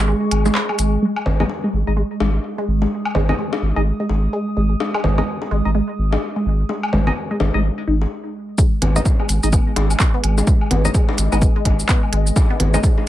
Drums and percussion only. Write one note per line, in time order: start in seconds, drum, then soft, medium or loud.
0.31 closed hi-hat medium
0.31 low woodblock soft
0.46 high bongo soft
0.46 shaker soft
0.55 clap medium
0.69 low woodblock medium
0.79 closed hi-hat medium
0.79 shaker soft
1.16 low woodblock medium
1.26 low conga medium
1.40 low conga medium
1.40 low woodblock soft
1.50 high bongo soft
2.20 high bongo medium
2.82 high bongo soft
3.05 low woodblock medium
3.15 low conga medium
3.29 low conga medium
3.29 low woodblock medium
3.53 high bongo medium
4.09 high bongo soft
4.80 high bongo medium
4.94 low woodblock medium
5.04 low conga medium
5.18 low conga medium
5.18 low woodblock medium
5.42 high bongo soft
6.13 high bongo medium
6.69 high bongo soft
6.83 low woodblock medium
6.93 low conga medium
7.07 low conga medium
7.07 low woodblock soft
7.40 high bongo medium
7.40 low conga medium
8.02 high bongo soft
8.58 kick loud
8.58 shaker medium
8.82 closed hi-hat medium
8.82 low conga medium
8.82 low woodblock soft
8.96 low conga medium
8.96 shaker soft
9.05 kick loud
9.05 high bongo soft
9.05 shaker medium
9.20 low woodblock soft
9.29 closed hi-hat medium
9.29 shaker medium
9.43 shaker soft
9.53 kick loud
9.53 low woodblock soft
9.53 shaker medium
9.76 closed hi-hat medium
9.76 high bongo medium
9.90 low woodblock soft
9.90 shaker soft
10.00 kick loud
10.00 clap loud
10.00 shaker medium
10.24 closed hi-hat medium
10.24 low woodblock soft
10.38 high bongo soft
10.38 shaker soft
10.47 kick loud
10.47 shaker medium
10.61 low woodblock soft
10.71 closed hi-hat loud
10.71 low conga loud
10.85 low conga medium
10.85 shaker soft
10.94 kick loud
10.94 low woodblock soft
10.94 shaker medium
11.09 high bongo medium
11.18 closed hi-hat loud
11.18 shaker medium
11.32 low woodblock soft
11.32 shaker soft
11.42 kick loud
11.42 shaker medium
11.65 kick medium
11.65 closed hi-hat medium
11.65 high bongo soft
11.65 low woodblock soft
11.80 shaker soft
11.89 kick loud
11.89 clap loud
11.89 shaker medium
12.03 low woodblock soft
12.13 closed hi-hat loud
12.27 shaker soft
12.36 kick loud
12.36 high bongo medium
12.36 low woodblock soft
12.36 shaker soft
12.60 closed hi-hat loud
12.60 low conga medium
12.74 low conga medium
12.74 low woodblock soft
12.74 shaker soft
12.83 kick loud
12.83 shaker medium
12.98 high bongo soft